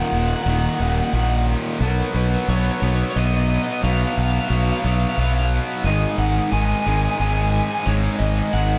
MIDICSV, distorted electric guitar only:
0, 0, Header, 1, 2, 480
1, 0, Start_track
1, 0, Tempo, 671892
1, 1297, Time_signature, 3, 2, 24, 8
1, 6276, End_track
2, 0, Start_track
2, 0, Title_t, "Distorted electric guitar"
2, 0, Program_c, 0, 30
2, 0, Note_on_c, 0, 39, 100
2, 0, Note_on_c, 0, 46, 104
2, 0, Note_on_c, 0, 51, 124
2, 328, Note_off_c, 0, 39, 0
2, 330, Note_off_c, 0, 46, 0
2, 333, Note_off_c, 0, 51, 0
2, 336, Note_on_c, 0, 39, 81
2, 338, Note_on_c, 0, 46, 81
2, 341, Note_on_c, 0, 51, 108
2, 567, Note_off_c, 0, 39, 0
2, 569, Note_off_c, 0, 46, 0
2, 573, Note_off_c, 0, 51, 0
2, 575, Note_on_c, 0, 39, 93
2, 578, Note_on_c, 0, 46, 100
2, 581, Note_on_c, 0, 51, 119
2, 805, Note_off_c, 0, 39, 0
2, 809, Note_off_c, 0, 46, 0
2, 811, Note_off_c, 0, 51, 0
2, 814, Note_on_c, 0, 39, 95
2, 817, Note_on_c, 0, 46, 100
2, 819, Note_on_c, 0, 51, 98
2, 1282, Note_off_c, 0, 39, 0
2, 1283, Note_off_c, 0, 46, 0
2, 1284, Note_off_c, 0, 51, 0
2, 1300, Note_on_c, 0, 47, 96
2, 1304, Note_on_c, 0, 54, 97
2, 1305, Note_on_c, 0, 59, 103
2, 1776, Note_off_c, 0, 47, 0
2, 1779, Note_on_c, 0, 47, 83
2, 1781, Note_off_c, 0, 54, 0
2, 1783, Note_off_c, 0, 59, 0
2, 1784, Note_on_c, 0, 54, 96
2, 1786, Note_on_c, 0, 59, 100
2, 2009, Note_off_c, 0, 47, 0
2, 2014, Note_off_c, 0, 54, 0
2, 2017, Note_on_c, 0, 47, 90
2, 2021, Note_off_c, 0, 59, 0
2, 2022, Note_on_c, 0, 54, 104
2, 2024, Note_on_c, 0, 59, 100
2, 2248, Note_off_c, 0, 47, 0
2, 2252, Note_off_c, 0, 54, 0
2, 2257, Note_on_c, 0, 47, 101
2, 2260, Note_off_c, 0, 59, 0
2, 2261, Note_on_c, 0, 54, 93
2, 2263, Note_on_c, 0, 59, 125
2, 2725, Note_off_c, 0, 47, 0
2, 2730, Note_off_c, 0, 54, 0
2, 2734, Note_on_c, 0, 47, 107
2, 2738, Note_off_c, 0, 59, 0
2, 2738, Note_on_c, 0, 54, 105
2, 2741, Note_on_c, 0, 59, 107
2, 3209, Note_off_c, 0, 47, 0
2, 3212, Note_off_c, 0, 54, 0
2, 3217, Note_on_c, 0, 47, 85
2, 3221, Note_on_c, 0, 54, 88
2, 3222, Note_off_c, 0, 59, 0
2, 3225, Note_on_c, 0, 59, 106
2, 3446, Note_off_c, 0, 47, 0
2, 3452, Note_off_c, 0, 54, 0
2, 3455, Note_on_c, 0, 47, 90
2, 3460, Note_off_c, 0, 59, 0
2, 3461, Note_on_c, 0, 54, 108
2, 3462, Note_on_c, 0, 59, 98
2, 3686, Note_off_c, 0, 47, 0
2, 3690, Note_off_c, 0, 54, 0
2, 3695, Note_on_c, 0, 47, 96
2, 3698, Note_on_c, 0, 54, 102
2, 3699, Note_off_c, 0, 59, 0
2, 3702, Note_on_c, 0, 59, 105
2, 4163, Note_off_c, 0, 47, 0
2, 4165, Note_off_c, 0, 54, 0
2, 4178, Note_on_c, 0, 44, 94
2, 4179, Note_off_c, 0, 59, 0
2, 4179, Note_on_c, 0, 51, 97
2, 4182, Note_on_c, 0, 56, 105
2, 4652, Note_off_c, 0, 51, 0
2, 4655, Note_off_c, 0, 44, 0
2, 4658, Note_on_c, 0, 44, 95
2, 4661, Note_off_c, 0, 56, 0
2, 4661, Note_on_c, 0, 51, 91
2, 4664, Note_on_c, 0, 56, 102
2, 4892, Note_off_c, 0, 44, 0
2, 4897, Note_off_c, 0, 51, 0
2, 4899, Note_off_c, 0, 56, 0
2, 4900, Note_on_c, 0, 44, 97
2, 4905, Note_on_c, 0, 51, 91
2, 4907, Note_on_c, 0, 56, 113
2, 5135, Note_off_c, 0, 44, 0
2, 5137, Note_off_c, 0, 51, 0
2, 5140, Note_off_c, 0, 56, 0
2, 5143, Note_on_c, 0, 44, 99
2, 5146, Note_on_c, 0, 51, 93
2, 5149, Note_on_c, 0, 56, 112
2, 5610, Note_off_c, 0, 44, 0
2, 5614, Note_off_c, 0, 51, 0
2, 5617, Note_off_c, 0, 56, 0
2, 5618, Note_on_c, 0, 44, 109
2, 5623, Note_on_c, 0, 51, 96
2, 5625, Note_on_c, 0, 56, 104
2, 6091, Note_off_c, 0, 44, 0
2, 6094, Note_off_c, 0, 51, 0
2, 6097, Note_off_c, 0, 56, 0
2, 6100, Note_on_c, 0, 44, 84
2, 6103, Note_on_c, 0, 51, 91
2, 6106, Note_on_c, 0, 56, 97
2, 6276, Note_off_c, 0, 44, 0
2, 6276, Note_off_c, 0, 51, 0
2, 6276, Note_off_c, 0, 56, 0
2, 6276, End_track
0, 0, End_of_file